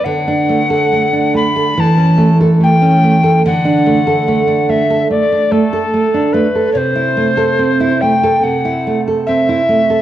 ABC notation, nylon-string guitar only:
X:1
M:4/4
L:1/16
Q:1/4=72
K:D
V:1 name="Nylon-string guitar"
D, D A, A A, D A, A E, C A, A A, C A, A | D, D A, A A, D A, A A, D A, A A, D A, A | [K:Ador] C, E A, A C E A, A C, E A, A C E A, A |]